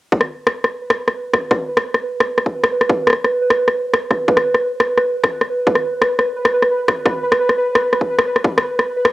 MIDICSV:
0, 0, Header, 1, 3, 480
1, 0, Start_track
1, 0, Tempo, 346821
1, 167, Time_signature, 4, 2, 24, 8
1, 12629, End_track
2, 0, Start_track
2, 0, Title_t, "Synth texture"
2, 0, Program_c, 0, 99
2, 165, Note_on_c, 0, 71, 89
2, 12629, Note_off_c, 0, 71, 0
2, 12629, End_track
3, 0, Start_track
3, 0, Title_t, "Drums"
3, 166, Note_on_c, 9, 36, 114
3, 284, Note_on_c, 9, 37, 52
3, 304, Note_off_c, 9, 36, 0
3, 423, Note_off_c, 9, 37, 0
3, 645, Note_on_c, 9, 37, 79
3, 784, Note_off_c, 9, 37, 0
3, 888, Note_on_c, 9, 37, 53
3, 1026, Note_off_c, 9, 37, 0
3, 1247, Note_on_c, 9, 37, 82
3, 1386, Note_off_c, 9, 37, 0
3, 1491, Note_on_c, 9, 37, 51
3, 1629, Note_off_c, 9, 37, 0
3, 1848, Note_on_c, 9, 37, 79
3, 1849, Note_on_c, 9, 36, 60
3, 1987, Note_off_c, 9, 36, 0
3, 1987, Note_off_c, 9, 37, 0
3, 2089, Note_on_c, 9, 36, 121
3, 2091, Note_on_c, 9, 37, 51
3, 2228, Note_off_c, 9, 36, 0
3, 2230, Note_off_c, 9, 37, 0
3, 2451, Note_on_c, 9, 37, 76
3, 2589, Note_off_c, 9, 37, 0
3, 2691, Note_on_c, 9, 37, 50
3, 2830, Note_off_c, 9, 37, 0
3, 3052, Note_on_c, 9, 37, 76
3, 3190, Note_off_c, 9, 37, 0
3, 3293, Note_on_c, 9, 37, 51
3, 3409, Note_on_c, 9, 36, 59
3, 3431, Note_off_c, 9, 37, 0
3, 3547, Note_off_c, 9, 36, 0
3, 3650, Note_on_c, 9, 37, 76
3, 3788, Note_off_c, 9, 37, 0
3, 3891, Note_on_c, 9, 37, 53
3, 4007, Note_on_c, 9, 36, 123
3, 4029, Note_off_c, 9, 37, 0
3, 4145, Note_off_c, 9, 36, 0
3, 4250, Note_on_c, 9, 37, 70
3, 4290, Note_off_c, 9, 37, 0
3, 4290, Note_on_c, 9, 37, 59
3, 4330, Note_off_c, 9, 37, 0
3, 4330, Note_on_c, 9, 37, 47
3, 4468, Note_off_c, 9, 37, 0
3, 4490, Note_on_c, 9, 37, 49
3, 4628, Note_off_c, 9, 37, 0
3, 4849, Note_on_c, 9, 37, 72
3, 4987, Note_off_c, 9, 37, 0
3, 5090, Note_on_c, 9, 37, 50
3, 5228, Note_off_c, 9, 37, 0
3, 5447, Note_on_c, 9, 37, 73
3, 5585, Note_off_c, 9, 37, 0
3, 5684, Note_on_c, 9, 37, 48
3, 5686, Note_on_c, 9, 36, 62
3, 5822, Note_off_c, 9, 37, 0
3, 5824, Note_off_c, 9, 36, 0
3, 5925, Note_on_c, 9, 36, 119
3, 6046, Note_on_c, 9, 37, 72
3, 6063, Note_off_c, 9, 36, 0
3, 6185, Note_off_c, 9, 37, 0
3, 6289, Note_on_c, 9, 37, 47
3, 6428, Note_off_c, 9, 37, 0
3, 6643, Note_on_c, 9, 37, 73
3, 6781, Note_off_c, 9, 37, 0
3, 6885, Note_on_c, 9, 37, 49
3, 7023, Note_off_c, 9, 37, 0
3, 7245, Note_on_c, 9, 36, 59
3, 7247, Note_on_c, 9, 37, 72
3, 7383, Note_off_c, 9, 36, 0
3, 7385, Note_off_c, 9, 37, 0
3, 7490, Note_on_c, 9, 37, 47
3, 7629, Note_off_c, 9, 37, 0
3, 7845, Note_on_c, 9, 36, 116
3, 7964, Note_on_c, 9, 37, 48
3, 7983, Note_off_c, 9, 36, 0
3, 8102, Note_off_c, 9, 37, 0
3, 8328, Note_on_c, 9, 37, 75
3, 8466, Note_off_c, 9, 37, 0
3, 8566, Note_on_c, 9, 37, 50
3, 8705, Note_off_c, 9, 37, 0
3, 8928, Note_on_c, 9, 37, 75
3, 9067, Note_off_c, 9, 37, 0
3, 9169, Note_on_c, 9, 37, 48
3, 9307, Note_off_c, 9, 37, 0
3, 9526, Note_on_c, 9, 36, 61
3, 9527, Note_on_c, 9, 37, 75
3, 9664, Note_off_c, 9, 36, 0
3, 9665, Note_off_c, 9, 37, 0
3, 9766, Note_on_c, 9, 36, 115
3, 9769, Note_on_c, 9, 37, 50
3, 9905, Note_off_c, 9, 36, 0
3, 9907, Note_off_c, 9, 37, 0
3, 10130, Note_on_c, 9, 37, 74
3, 10269, Note_off_c, 9, 37, 0
3, 10371, Note_on_c, 9, 37, 50
3, 10510, Note_off_c, 9, 37, 0
3, 10730, Note_on_c, 9, 37, 79
3, 10868, Note_off_c, 9, 37, 0
3, 10973, Note_on_c, 9, 37, 50
3, 11088, Note_on_c, 9, 36, 56
3, 11111, Note_off_c, 9, 37, 0
3, 11227, Note_off_c, 9, 36, 0
3, 11329, Note_on_c, 9, 37, 76
3, 11468, Note_off_c, 9, 37, 0
3, 11569, Note_on_c, 9, 37, 51
3, 11687, Note_on_c, 9, 36, 112
3, 11708, Note_off_c, 9, 37, 0
3, 11825, Note_off_c, 9, 36, 0
3, 11871, Note_on_c, 9, 37, 79
3, 12009, Note_off_c, 9, 37, 0
3, 12167, Note_on_c, 9, 37, 53
3, 12305, Note_off_c, 9, 37, 0
3, 12525, Note_on_c, 9, 37, 79
3, 12629, Note_off_c, 9, 37, 0
3, 12629, End_track
0, 0, End_of_file